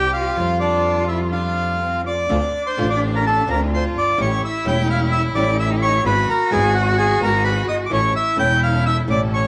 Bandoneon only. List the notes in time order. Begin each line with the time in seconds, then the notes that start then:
Already playing: G4 G5
0.13 F4 F5
0.60 D4 D5
1.08 E4 E5
1.32 F4 F5
2.06 D5 D6
2.66 C5 C6
2.90 D5 D6
3.16 A#4 A#5
3.26 A4 A5
3.50 A#4 A#5
3.74 C5 C6
3.98 D5 D6
4.21 C#5 C#6
4.45 E5 E6
4.68 G5 G6
4.90 F5 F6
5.12 E5 E6
5.35 D5 D6
5.60 E5 E6
5.82 C#5 C#6
6.06 B4 B5
6.29 A#4 A#5
6.52 G#4 G#5
6.75 F#4 F#5
6.98 G#4 G#5
7.23 A#4 A#5
7.44 B4 B5
7.68 D#5 D#6
7.86 D6
7.93 C#5 C#6
8.16 E5 E6
8.39 G5 G6
8.63 F5 F6
8.86 E5 E6
9.10 D5 D6
9.34 C#5 C#6